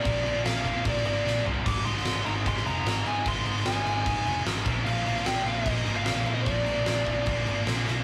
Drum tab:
CC |x-x-x-x-x-x-----|x-x-x-x-x-x-x-x-|x-x-x-x-x-x-x-x-|x-x-x-x-x-x-x-x-|
SD |----o----o--o---|---oo----o--o---|---oo-------o---|---oo----o--o---|
FT |--------------o-|----------------|----------------|----------------|
BD |o-----o-o-------|o-------o-------|o-------o-----o-|--------o-------|

CC |x-x-x-x-x-x-x---|
SD |----o-------o-o-|
FT |----------------|
BD |o-----o-o-------|